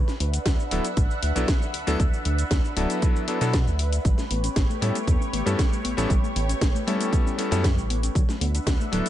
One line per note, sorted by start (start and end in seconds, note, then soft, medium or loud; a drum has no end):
0.00 4.01 D4 medium
0.00 8.11 B4 medium
0.00 4.01 E5 medium
0.00 4.01 F#5 medium
0.08 snare soft
0.08 shaker soft
0.20 0.39 D2 loud
0.20 open hi-hat loud
0.34 closed hi-hat medium
0.34 shaker medium
0.46 0.55 D2 medium
0.46 kick loud
0.46 snare loud
0.46 closed hi-hat soft
0.46 shaker medium
0.60 shaker soft
0.71 0.81 D1 medium
0.71 0.84 F#3 medium
0.71 0.85 B3 medium
0.71 0.85 D4 medium
0.71 0.85 E4 medium
0.71 0.85 A4 medium
0.71 open hi-hat loud
0.84 closed hi-hat medium
0.84 shaker medium
0.97 1.07 A1 loud
0.97 kick loud
0.97 closed hi-hat soft
0.97 shaker medium
1.11 shaker soft
1.23 1.32 D2 medium
1.23 open hi-hat loud
1.35 1.45 B1 loud
1.35 1.48 F#3 medium
1.35 1.48 B3 medium
1.35 1.48 D4 medium
1.35 1.49 E4 medium
1.35 1.49 A4 medium
1.35 closed hi-hat medium
1.35 shaker medium
1.48 kick loud
1.48 snare loud
1.48 closed hi-hat soft
1.48 shaker soft
1.62 shaker soft
1.74 1.85 D2 soft
1.74 open hi-hat loud
1.87 1.96 D2 medium
1.87 2.00 F#3 loud
1.87 2.00 B3 medium
1.87 2.00 D4 medium
1.87 2.00 E4 medium
1.87 2.00 A4 loud
1.87 closed hi-hat medium
1.87 shaker medium
2.00 2.09 D2 loud
2.00 kick loud
2.00 closed hi-hat soft
2.00 shaker medium
2.14 shaker soft
2.25 2.44 D2 loud
2.25 open hi-hat loud
2.38 closed hi-hat medium
2.38 shaker medium
2.51 2.60 D2 medium
2.51 kick loud
2.51 snare loud
2.51 closed hi-hat soft
2.51 shaker medium
2.65 shaker soft
2.76 2.86 D1 medium
2.76 3.25 F#3 medium
2.76 3.25 B3 medium
2.76 3.25 D4 medium
2.76 3.25 E4 medium
2.76 3.25 A4 medium
2.76 open hi-hat loud
2.90 closed hi-hat medium
2.90 shaker medium
3.02 kick loud
3.02 closed hi-hat soft
3.02 shaker medium
3.16 shaker soft
3.28 3.38 F#3 medium
3.28 3.38 B3 medium
3.28 3.38 D4 medium
3.28 3.38 E4 medium
3.28 3.38 A4 medium
3.28 open hi-hat loud
3.41 3.68 B2 medium
3.41 3.53 F#3 medium
3.41 3.54 B3 medium
3.41 3.54 D4 medium
3.41 3.54 E4 medium
3.41 3.54 A4 loud
3.41 closed hi-hat medium
3.41 shaker medium
3.54 kick loud
3.54 snare loud
3.54 closed hi-hat soft
3.54 shaker medium
3.67 3.99 D2 medium
3.67 shaker soft
3.79 open hi-hat loud
3.93 closed hi-hat medium
3.93 shaker medium
4.05 4.14 A1 loud
4.05 4.14 G3 loud
4.05 8.11 A3 medium
4.05 8.12 G4 medium
4.05 8.11 C#5 medium
4.05 kick loud
4.05 closed hi-hat soft
4.05 shaker medium
4.18 4.22 A3 loud
4.18 snare soft
4.18 shaker soft
4.30 4.49 A1 loud
4.30 4.37 B3 medium
4.30 open hi-hat loud
4.44 4.50 C#4 medium
4.44 closed hi-hat medium
4.44 shaker medium
4.56 4.66 A1 medium
4.56 4.63 B3 medium
4.56 kick loud
4.56 snare loud
4.56 closed hi-hat soft
4.56 shaker medium
4.69 4.78 A3 loud
4.69 shaker soft
4.81 4.91 A2 medium
4.81 4.95 G3 medium
4.81 4.88 G3 loud
4.81 4.95 B3 medium
4.81 4.95 C#4 medium
4.81 4.95 E4 medium
4.81 4.95 A4 medium
4.81 open hi-hat loud
4.95 5.04 A3 medium
4.95 closed hi-hat medium
4.95 shaker medium
5.07 5.17 E2 loud
5.07 5.17 B3 loud
5.07 kick loud
5.07 closed hi-hat soft
5.07 shaker medium
5.20 5.27 C#4 loud
5.20 shaker soft
5.33 5.42 A1 medium
5.33 5.39 B3 medium
5.33 open hi-hat loud
5.46 5.55 G2 loud
5.46 5.58 G3 medium
5.46 5.52 A3 medium
5.46 5.59 B3 medium
5.46 5.59 C#4 medium
5.46 5.59 E4 medium
5.46 5.59 A4 medium
5.46 closed hi-hat medium
5.46 shaker medium
5.59 5.65 G3 medium
5.59 kick loud
5.59 snare loud
5.59 closed hi-hat soft
5.59 shaker medium
5.72 5.78 G3 medium
5.72 shaker soft
5.84 5.95 A1 soft
5.84 5.91 B3 loud
5.84 open hi-hat loud
5.97 6.07 A1 medium
5.97 6.10 G3 loud
5.97 6.10 B3 medium
5.97 6.06 C#4 medium
5.97 6.10 C#4 medium
5.97 6.10 E4 medium
5.97 6.10 A4 loud
5.97 closed hi-hat medium
5.97 shaker medium
6.10 6.19 A1 loud
6.10 6.19 G3 loud
6.10 kick loud
6.10 closed hi-hat soft
6.10 shaker medium
6.23 6.27 A3 loud
6.23 shaker soft
6.35 6.54 A1 loud
6.35 6.42 B3 medium
6.35 open hi-hat loud
6.48 6.55 C#4 medium
6.48 closed hi-hat medium
6.48 shaker medium
6.61 6.71 A1 medium
6.61 6.68 B3 medium
6.61 kick loud
6.61 snare loud
6.61 closed hi-hat soft
6.61 shaker medium
6.74 6.83 A3 loud
6.74 shaker soft
6.87 6.96 A2 medium
6.87 7.35 G3 medium
6.87 6.93 G3 loud
6.87 7.35 B3 medium
6.87 7.35 C#4 medium
6.87 7.36 E4 medium
6.87 7.36 A4 medium
6.87 open hi-hat loud
7.00 7.09 A3 medium
7.00 closed hi-hat medium
7.00 shaker medium
7.13 7.22 B3 loud
7.13 kick loud
7.13 closed hi-hat medium
7.13 shaker medium
7.26 7.32 C#4 loud
7.26 shaker soft
7.38 7.48 G3 medium
7.38 7.48 B3 medium
7.38 7.45 B3 medium
7.38 7.48 C#4 medium
7.38 7.48 E4 medium
7.38 7.49 A4 medium
7.38 open hi-hat loud
7.51 7.79 F#2 medium
7.51 7.64 G3 medium
7.51 7.58 A3 medium
7.51 7.64 B3 medium
7.51 7.64 C#4 medium
7.51 7.64 E4 medium
7.51 7.64 A4 loud
7.51 closed hi-hat medium
7.51 shaker medium
7.64 7.70 G3 medium
7.64 kick loud
7.64 snare loud
7.64 closed hi-hat soft
7.64 shaker medium
7.77 8.10 A1 medium
7.77 7.83 G3 medium
7.77 shaker soft
7.90 7.96 B3 loud
7.90 open hi-hat loud
8.03 8.12 C#4 medium
8.03 closed hi-hat medium
8.03 shaker medium
8.15 8.25 D2 loud
8.15 8.25 F#3 loud
8.15 9.09 D4 medium
8.15 9.09 B4 medium
8.15 9.09 E5 medium
8.15 9.09 F#5 medium
8.15 kick loud
8.15 closed hi-hat soft
8.15 shaker medium
8.29 8.32 A3 loud
8.29 snare soft
8.29 shaker soft
8.41 8.59 D2 loud
8.41 8.47 B3 medium
8.41 open hi-hat loud
8.54 8.60 D4 medium
8.54 closed hi-hat medium
8.54 shaker medium
8.67 8.76 D2 loud
8.67 8.73 B3 medium
8.67 kick loud
8.67 snare loud
8.67 closed hi-hat medium
8.67 shaker medium
8.80 8.89 A3 loud
8.80 shaker soft
8.92 9.02 D1 medium
8.92 9.05 F#3 medium
8.92 8.99 F#3 loud
8.92 9.05 B3 medium
8.92 9.05 D4 medium
8.92 9.05 E4 medium
8.92 9.06 A4 medium
8.92 open hi-hat loud
9.06 9.09 A3 medium
9.06 closed hi-hat medium